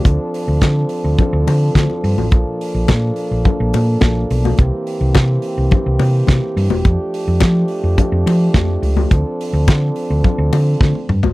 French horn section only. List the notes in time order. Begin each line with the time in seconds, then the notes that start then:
Already playing: F3 D4
0.04 C4 A4
2.31 A#3 D4 A4
4.59 E3 C4 G4
6.85 F3 A3 D4
9.11 F3 C4 D4 A4